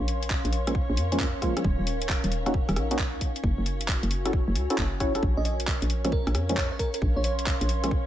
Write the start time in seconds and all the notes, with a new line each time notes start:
Already playing: C#4 A#4 C#5 F5 C6
0.00 A#1
0.08 open hi-hat
0.23 closed hi-hat
0.30 kick, clap
0.45 A#1, closed hi-hat
0.53 open hi-hat
0.67 F3 G#3 A#3 C#4, cross-stick, closed hi-hat
0.75 kick
0.90 A#1
0.97 F2, open hi-hat
1.12 F3 G#3 A#3 C#4, closed hi-hat
1.20 kick, clap
1.34 G#1
1.42 F3 G#3 A#3 F4, kick, cross-stick, open hi-hat
1.57 F3 G#3 A#3 C#4, cross-stick, closed hi-hat
1.64 D#1 D#4, kick
1.79 D#1
1.87 open hi-hat
2.02 closed hi-hat
2.09 kick, clap
2.24 D#1, closed hi-hat
2.32 open hi-hat
2.46 A#3 C#4 D#4 F#4, cross-stick, closed hi-hat
2.54 kick
2.69 D#1, cross-stick, open hi-hat
2.76 A#1, cross-stick, open hi-hat
2.91 A#3 C#4 D#4 F#4, closed hi-hat
2.99 kick, clap
3.13 C#2
3.21 kick, open hi-hat
3.36 closed hi-hat
3.43 F#1 F#4, kick
3.58 F#1
3.66 C#5, open hi-hat
3.81 closed hi-hat
3.88 kick, clap
4.03 F#1, closed hi-hat
4.11 open hi-hat
4.25 C#4 E4 F#4 A4 G#5, cross-stick, closed hi-hat
4.33 kick
4.48 F#1
4.55 C#2, open hi-hat
4.70 C#4 E4 F#4 A4, closed hi-hat
4.78 F#1, kick, clap
5.00 C#4 E4 F#4 C#5, kick, cross-stick, open hi-hat
5.15 C#4 E4 F#4 A4, cross-stick, closed hi-hat
5.22 A#1 C#4 A#4 C#5, kick
5.37 A#1 D#5
5.45 D#5, open hi-hat
5.60 closed hi-hat
5.67 kick, clap
5.81 A#1 F5, closed hi-hat
5.90 open hi-hat
6.05 F3 G#3 A#3 C#4, cross-stick, closed hi-hat
6.12 A#4, kick
6.27 A#1, cross-stick, open hi-hat
6.35 F2, cross-stick, open hi-hat
6.49 F3 G#3 A#3 C#4, closed hi-hat
6.57 C#5, kick, clap
6.72 G#1 C#5 C6
6.79 A#4, kick, open hi-hat
6.94 A#4, closed hi-hat
7.02 A#1, kick
7.16 A#1 C#5
7.24 C#5, open hi-hat
7.39 closed hi-hat
7.46 kick, clap
7.61 A#1, closed hi-hat
7.69 open hi-hat
7.84 F3 G#3 A#3 C#4, cross-stick, closed hi-hat
7.91 kick